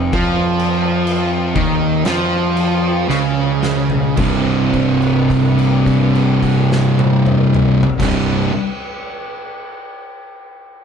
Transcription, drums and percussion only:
0.13 kick loud
0.13 crash medium
0.59 crash medium
1.07 crash medium
1.55 kick loud
1.55 crash medium
2.05 snare loud
2.05 crash medium
2.57 crash medium
3.10 snare medium
3.63 snare medium
3.90 floor tom medium
4.17 kick loud
4.17 crash loud
4.74 kick medium
4.74 crash medium
5.02 crash soft
5.30 kick medium
5.30 crash medium
5.59 crash medium
5.86 kick medium
5.86 crash medium
6.15 crash medium
6.43 kick medium
6.43 crash medium
6.72 snare loud
6.99 high tom loud
7.26 mid tom medium
7.54 mid tom loud
7.83 floor tom loud
8.00 kick loud
8.00 snare loud
8.00 crash loud

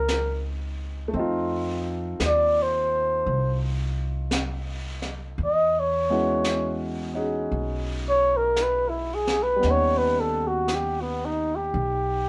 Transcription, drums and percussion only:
0.08 brush sweep soft
0.08 snare soft
0.08 hi-hat pedal soft
1.14 brush sweep soft
2.20 brush sweep soft
2.20 snare soft
2.20 hi-hat pedal soft
3.25 brush sweep soft
4.31 brush sweep soft
4.31 snare soft
4.31 hi-hat pedal soft
5.02 snare soft
5.37 brush sweep soft
6.44 brush sweep soft
6.44 snare soft
6.44 hi-hat pedal soft
7.51 brush sweep soft
8.56 brush sweep soft
8.56 snare soft
8.56 hi-hat pedal soft
9.27 snare soft
9.63 brush sweep soft
9.63 snare soft
10.68 brush sweep soft
10.68 snare soft
10.68 hi-hat pedal soft
11.73 brush sweep soft

